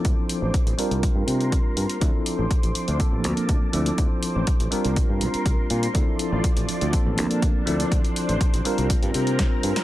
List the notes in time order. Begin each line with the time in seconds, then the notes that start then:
Already playing: F3 C4 D4 E4 A4 C5 D6
0.05 D2, kick, closed hi-hat
0.29 open hi-hat
0.42 A1
0.54 kick, closed hi-hat
0.66 A1, closed hi-hat
0.78 G3 C4 D4 F4 A#4 C6, muted fingered electric bass stroke, open hi-hat
0.91 C2, closed hi-hat
1.03 kick, closed hi-hat
1.15 G2
1.27 C3, open hi-hat
1.41 closed hi-hat
1.52 kick, closed hi-hat
1.77 G2, open hi-hat
1.89 closed hi-hat
2.01 D2 F3 C4 D4 E4 A4 C5 D6, kick, closed hi-hat
2.26 open hi-hat
2.39 A1
2.51 kick, closed hi-hat
2.63 A1, closed hi-hat
2.75 muted fingered electric bass stroke, open hi-hat
2.88 D2, closed hi-hat
2.98 F3 A#3 C4 D4 A4 A5, kick, closed hi-hat
3.13 A1
3.24 D2, open hi-hat
3.37 muted fingered electric bass stroke, closed hi-hat
3.49 D2, kick, closed hi-hat
3.72 D2 F3 C4 D4 E4 A4 C5, open hi-hat
3.86 closed hi-hat
3.98 D2, kick, closed hi-hat
4.23 open hi-hat
4.36 A1
4.47 kick, closed hi-hat
4.60 A1, closed hi-hat
4.71 G3 C4 D4 F4 A#4 C6, muted fingered electric bass stroke, open hi-hat
4.85 C2, closed hi-hat
4.96 kick, closed hi-hat
5.09 G2
5.21 C2, open hi-hat
5.34 muted fingered electric bass stroke, closed hi-hat
5.46 C2, kick, closed hi-hat
5.70 A#2, open hi-hat
5.83 closed hi-hat
5.94 D2 F3 C4 D4 E4 A4 D5, kick, closed hi-hat
6.19 open hi-hat
6.32 A1
6.44 kick, closed hi-hat
6.57 A1, closed hi-hat
6.69 open hi-hat
6.81 D2, closed hi-hat
6.92 F3 A#3 C4 D4 A4 A5, muted fingered electric bass stroke, kick, closed hi-hat
7.06 A1
7.18 D2, open hi-hat
7.31 muted fingered electric bass stroke, closed hi-hat
7.42 D2, kick, closed hi-hat
7.66 D2 F3 C4 D4 E4 A4 C5, open hi-hat
7.80 closed hi-hat
7.92 D2, kick, closed hi-hat
8.04 closed hi-hat
8.16 open hi-hat
8.29 A1, closed hi-hat
8.41 kick, closed hi-hat
8.54 A1, closed hi-hat
8.65 G3 C4 D4 F4 A#4, muted fingered electric bass stroke, open hi-hat
8.78 C2, closed hi-hat
8.90 kick, closed hi-hat
9.03 G2, closed hi-hat
9.14 C3, open hi-hat
9.27 closed hi-hat
9.39 kick, snare, closed hi-hat
9.63 G2, open hi-hat
9.76 snare, closed hi-hat